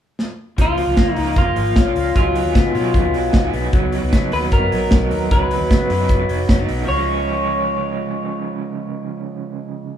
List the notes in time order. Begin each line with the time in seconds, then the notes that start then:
0.19 snare
0.58 C#2 C#3 F3 A#3 F4, kick, closed hi-hat
0.77 F3, open hi-hat
0.87 C#2 F3 A#3 F4
0.97 C#3 A#3, kick, snare, closed hi-hat
1.14 C#2 C#3 F3 A#3 D#4 F4, open hi-hat
1.36 F1 A#3 F4, kick, closed hi-hat
1.46 F3 A#3 F4
1.56 G#1 F3, open hi-hat
1.76 C#4, kick, snare, closed hi-hat
1.85 F3 A#3 F4
1.96 C#2 A#3, open hi-hat
2.15 C#2 F#3 B3 D#4 F4 G#4, kick, closed hi-hat
2.35 F#3, open hi-hat
2.44 D#2 B3 D#4 G#4
2.55 C#3 B3, kick, snare, closed hi-hat
2.75 B2 C#3 F#3 B3 D#4 G#4, open hi-hat
2.94 D#2 B3, kick, closed hi-hat
3.04 B3 D#4 G#4
3.14 B1 F#3, open hi-hat
3.33 C#2 D#4, kick, snare, closed hi-hat
3.43 B3 D#4 G#4
3.53 B1 B3, open hi-hat
3.73 C#2 C#3 F#3 B3 D#4, kick, closed hi-hat
3.92 F#3, open hi-hat
4.03 C#2 F#3 B3 D#4
4.13 C#3 B3, kick, snare, closed hi-hat
4.32 D#2 C#3 F#3 B3 D#4 B4, open hi-hat
4.52 F#1 B3 A#4, kick, closed hi-hat
4.64 F#3 B3 D#4
4.72 A#1 F#3, open hi-hat
4.91 B1 D#4, kick, snare, closed hi-hat
5.03 F#3 B3 D#4
5.11 D#2 B3, open hi-hat
5.31 C#2 C#3 F#3 B3 D#4 B4, kick, closed hi-hat
5.51 F#3, open hi-hat
5.61 D#2 F#3 B3 D#4
5.70 C#3 B3, kick, snare, closed hi-hat
5.90 F#2 C#3 F#3 B3 D#4, open hi-hat
6.09 F#1 B3, kick, closed hi-hat
6.19 F#3 B3 D#4
6.29 F1 F#3, open hi-hat
6.49 F#1 C#4, kick, snare, closed hi-hat
6.59 F#3 B3 D#4
6.68 B1 B3, open hi-hat
6.82 C#3 F3
6.88 C#2 F3 G#3 C#5
6.97 G#3 C#4
7.03 C#4